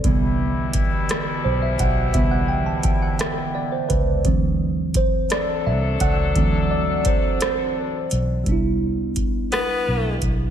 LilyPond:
<<
  \new Staff \with { instrumentName = "Tine electric piano" } { \time 6/8 \key c \lydian \tempo 4. = 57 d''8 r4. c''16 e''16 fis''8 | e''16 fis''16 g''16 a''16 g''16 fis''16 e''8 d''16 c''16 b'8 | r4 c''8 d''8 e''8 fis''8~ | fis''8 d''8 c''8 c''8 r4 |
<g b d' e'>2. | }
  \new Staff \with { instrumentName = "Tine electric piano" } { \clef bass \time 6/8 \key c \lydian <d e b>8 r2 r8 | <d e b>8 r2 r8 | <e fis c'>2. | <e fis c'>8 r2 r8 |
r2. | }
  \new Staff \with { instrumentName = "Tenor saxophone" } { \time 6/8 \key c \lydian r2. | r2. | r2. | r2. |
r4. b4 r8 | }
  \new Staff \with { instrumentName = "Horn section" } { \time 6/8 \key c \lydian <b, g e'>2.~ | <b, g e'>2~ <b, g e'>8 r8 | r4. <fis d' a'>4.~ | <fis d' a'>2~ <fis d' a'>8 r8 |
r2. | }
  \new Staff \with { instrumentName = "Fingered electric bass" } { \clef bass \time 6/8 \key c \lydian c,2 b,,8 b,,8 | c,2~ c,8 des,8 | d,2 c,8 des,8 | d,2~ d,8 b,,8 |
c,2 b,,8 b,,8 | }
  \new DrumStaff \with { instrumentName = "Drums" } \drummode { \time 6/8 <hh bd>4 <hh bd>8 <hh ss>4 <hh bd>8 | <hh bd>4 <hh bd>8 <hh ss>4 <hh bd>8 | <hh bd>4 <hh bd>8 <hh ss>4 <hh bd>8 | <hh bd>4 <hh bd>8 <hh ss>4 hh8 |
<hh bd>4 <hh bd>8 <hh ss>4 <hh bd>8 | }
>>